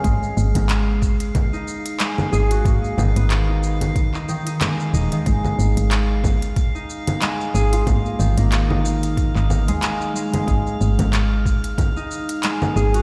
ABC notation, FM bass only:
X:1
M:4/4
L:1/16
Q:"Swing 16ths" 1/4=92
K:G#dor
V:1 name="FM bass" clef=bass
G,,, z G,,, G,,,4- G,,, z6 G,,,2 | G,,, z G,,, G,,,4- G,,, z6 D,,, z | G,,, z G,,, G,,,4- G,,, z6 G,,,2 | G,,, z G,,, G,,,4- G,,, z G,,,2 D,, z4 |
G,,, z G,,, G,,,4- G,,, z6 G,,,2 |]